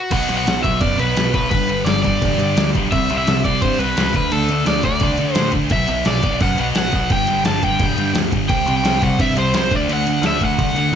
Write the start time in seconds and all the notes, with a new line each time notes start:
Already playing: F#4
0.11 B1 B2 F#3 B3 F#5, kick, crash
0.29 B1 B2 F#3 B3, crash
0.38 F#5
0.46 B1 B2 F#3 B3, snare, crash
0.63 B1 B2 F#3 B3 E5, kick, crash
0.81 F#2 B2 F#3 B3 D5, kick, crash
0.98 B1 B2 F#3 B3 B4, crash
1.16 B1 B2 F#3 B3, snare, crash
1.34 B1 B2 F#3 B3 B4, kick, crash
1.50 G1 G2 D3 G3 B4, kick, crash
1.69 G2 D3 G3, crash
1.85 G1 G2 D3 D5, snare, crash
1.89 G3
2.03 G1 G2 D3 G3 D5, kick, crash
2.22 E1 G2 D3 G3, kick, crash
2.38 G2 D3 G3, crash
2.57 D2 G2 D3 G3, snare, crash
2.75 B1 G2 D3 G3, kick, crash
2.92 C2 C3 G3 C4 E5, kick, crash
3.10 C2 C3 G3 C4, crash
3.18 E5
3.27 C2 C3 G3 C4, snare, crash
3.45 C2 C3 G3 C4 D5, kick, crash
3.61 G2 C3 G3 C4 C5, kick, crash
3.79 C2 C3 G3 C4 B4, crash
3.97 C#2 C3 G3 C4, snare, crash
4.14 D2 D3 A3 D4 B4, kick, crash
4.32 D2 D3 A3 D4 A4, crash
4.49 D3 A3 D4, crash
4.65 D2 D3 A3 D4 D5, snare, crash
4.83 D2 D3 A3 D4 D5, kick, crash
5.00 C2 D3 A3 D4, kick, crash
5.18 D3 A3 D4, crash
5.34 A2 D3 A3 D4 C5, snare, crash
5.52 A#1 D3 A3 D4, kick, crash
5.70 B1 B2 F#3 B3 E5, kick, crash
5.88 B1 B2 F#3 B3, crash
6.05 B1 B2 F#3 B3 D5, snare, crash
6.22 B1 B2 F#3 B3, kick, crash
6.40 F#2 B2 F#3 B3 F#5, kick, crash
6.57 B1 B2 F#3 B3, crash
6.61 F#5
6.74 B1 B2 F#3 B3 F#5, snare, crash
6.92 B1 B2 F#3 B3, kick, crash
7.10 G1 G2 D3 G3 G5, kick, crash
7.27 G2 D3 G3, crash
7.44 G1 G2 D3 G3 A5, snare, crash
7.63 G1 G2 D3 G3 G5, kick, crash
7.79 E1 G2 D3 G3, kick, crash
7.96 G2 D3 G3, crash
8.13 D2 G2 D3 G3, snare, crash
8.31 G1 G2 D3 G3, kick, crash
8.49 C2 C3 G3 C4 G5, kick, crash
8.66 C2 C3 G3 C4, crash
8.77 G5
8.83 C2 C3 G3 C4, snare, crash
9.01 C2 C3 G3 C4 F#5, kick, crash
9.18 G2 C3 G3 C4 E5, kick, crash
9.34 C2 C3 G3 C4, crash
9.39 C5
9.53 C2 C3 G3 C4 C5, snare, crash
9.71 D2 D3 A3 D4, kick, crash
9.75 D5
9.88 D2 D3 A3 D4, crash
9.93 F#5
10.07 D3 A3 D4, crash
10.21 D2 D3 A3 D4, snare, crash
10.27 E5
10.41 D2 D3 A3 D4, kick, crash
10.45 F#5
10.58 C2 D3 A3 D4, kick, crash
10.75 D3 A3 D4, crash
10.92 A2